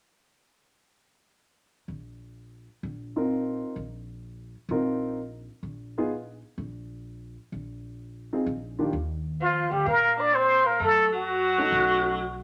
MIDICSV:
0, 0, Header, 1, 5, 480
1, 0, Start_track
1, 0, Tempo, 468019
1, 1466, Time_signature, 4, 2, 24, 8
1, 12752, End_track
2, 0, Start_track
2, 0, Title_t, "Muted trumpet"
2, 0, Program_c, 0, 59
2, 9662, Note_on_c, 0, 65, 77
2, 9975, Note_on_c, 0, 67, 74
2, 9990, Note_off_c, 0, 65, 0
2, 10122, Note_off_c, 0, 67, 0
2, 10133, Note_on_c, 0, 70, 85
2, 10464, Note_on_c, 0, 74, 86
2, 10479, Note_off_c, 0, 70, 0
2, 10613, Note_on_c, 0, 72, 97
2, 10628, Note_off_c, 0, 74, 0
2, 10939, Note_on_c, 0, 70, 82
2, 10954, Note_off_c, 0, 72, 0
2, 11085, Note_off_c, 0, 70, 0
2, 11104, Note_on_c, 0, 69, 87
2, 11393, Note_off_c, 0, 69, 0
2, 11446, Note_on_c, 0, 66, 82
2, 12752, Note_off_c, 0, 66, 0
2, 12752, End_track
3, 0, Start_track
3, 0, Title_t, "Grand piano"
3, 0, Program_c, 1, 0
3, 3242, Note_on_c, 1, 63, 46
3, 3243, Note_on_c, 1, 60, 53
3, 3245, Note_on_c, 1, 65, 49
3, 3254, Note_on_c, 1, 70, 55
3, 3839, Note_off_c, 1, 60, 0
3, 3839, Note_off_c, 1, 63, 0
3, 3840, Note_off_c, 1, 65, 0
3, 3845, Note_off_c, 1, 70, 0
3, 4826, Note_on_c, 1, 60, 55
3, 4827, Note_on_c, 1, 63, 49
3, 4830, Note_on_c, 1, 65, 55
3, 4834, Note_on_c, 1, 70, 62
3, 5306, Note_off_c, 1, 60, 0
3, 5306, Note_off_c, 1, 63, 0
3, 5308, Note_off_c, 1, 65, 0
3, 5310, Note_off_c, 1, 70, 0
3, 6130, Note_on_c, 1, 63, 56
3, 6131, Note_on_c, 1, 59, 59
3, 6135, Note_on_c, 1, 65, 58
3, 6135, Note_on_c, 1, 68, 70
3, 6259, Note_off_c, 1, 63, 0
3, 6260, Note_off_c, 1, 59, 0
3, 6261, Note_off_c, 1, 65, 0
3, 6261, Note_off_c, 1, 68, 0
3, 8540, Note_on_c, 1, 60, 50
3, 8541, Note_on_c, 1, 63, 49
3, 8544, Note_on_c, 1, 65, 46
3, 8549, Note_on_c, 1, 68, 59
3, 8665, Note_off_c, 1, 60, 0
3, 8666, Note_off_c, 1, 63, 0
3, 8667, Note_off_c, 1, 65, 0
3, 8670, Note_off_c, 1, 68, 0
3, 9011, Note_on_c, 1, 62, 56
3, 9013, Note_on_c, 1, 58, 46
3, 9015, Note_on_c, 1, 65, 52
3, 9017, Note_on_c, 1, 51, 52
3, 9021, Note_on_c, 1, 67, 55
3, 9141, Note_off_c, 1, 62, 0
3, 9142, Note_off_c, 1, 58, 0
3, 9143, Note_off_c, 1, 65, 0
3, 9144, Note_off_c, 1, 51, 0
3, 9146, Note_off_c, 1, 67, 0
3, 11878, Note_on_c, 1, 57, 65
3, 11882, Note_on_c, 1, 61, 61
3, 11885, Note_on_c, 1, 66, 70
3, 11889, Note_on_c, 1, 63, 60
3, 12480, Note_off_c, 1, 57, 0
3, 12482, Note_off_c, 1, 61, 0
3, 12484, Note_off_c, 1, 66, 0
3, 12486, Note_off_c, 1, 63, 0
3, 12752, End_track
4, 0, Start_track
4, 0, Title_t, "Tenor saxophone"
4, 0, Program_c, 2, 66
4, 9645, Note_on_c, 2, 53, 66
4, 9952, Note_on_c, 2, 55, 61
4, 9968, Note_off_c, 2, 53, 0
4, 10099, Note_off_c, 2, 55, 0
4, 10105, Note_on_c, 2, 58, 72
4, 10432, Note_on_c, 2, 62, 76
4, 10447, Note_off_c, 2, 58, 0
4, 10599, Note_on_c, 2, 60, 78
4, 10614, Note_off_c, 2, 62, 0
4, 10914, Note_on_c, 2, 58, 73
4, 10930, Note_off_c, 2, 60, 0
4, 11062, Note_off_c, 2, 58, 0
4, 11068, Note_on_c, 2, 57, 67
4, 11374, Note_off_c, 2, 57, 0
4, 11405, Note_on_c, 2, 54, 78
4, 12752, Note_off_c, 2, 54, 0
4, 12752, End_track
5, 0, Start_track
5, 0, Title_t, "Upright bass"
5, 0, Program_c, 3, 32
5, 1929, Note_on_c, 3, 34, 55
5, 2733, Note_off_c, 3, 34, 0
5, 2904, Note_on_c, 3, 34, 70
5, 3701, Note_off_c, 3, 34, 0
5, 3855, Note_on_c, 3, 34, 64
5, 4657, Note_off_c, 3, 34, 0
5, 4806, Note_on_c, 3, 34, 71
5, 5613, Note_off_c, 3, 34, 0
5, 5771, Note_on_c, 3, 34, 60
5, 6576, Note_off_c, 3, 34, 0
5, 6745, Note_on_c, 3, 34, 68
5, 7543, Note_off_c, 3, 34, 0
5, 7716, Note_on_c, 3, 34, 67
5, 8510, Note_off_c, 3, 34, 0
5, 8680, Note_on_c, 3, 34, 75
5, 9122, Note_off_c, 3, 34, 0
5, 9157, Note_on_c, 3, 39, 72
5, 9920, Note_off_c, 3, 39, 0
5, 9959, Note_on_c, 3, 38, 64
5, 10100, Note_off_c, 3, 38, 0
5, 10115, Note_on_c, 3, 46, 78
5, 11032, Note_off_c, 3, 46, 0
5, 11073, Note_on_c, 3, 42, 69
5, 11991, Note_off_c, 3, 42, 0
5, 12021, Note_on_c, 3, 35, 82
5, 12752, Note_off_c, 3, 35, 0
5, 12752, End_track
0, 0, End_of_file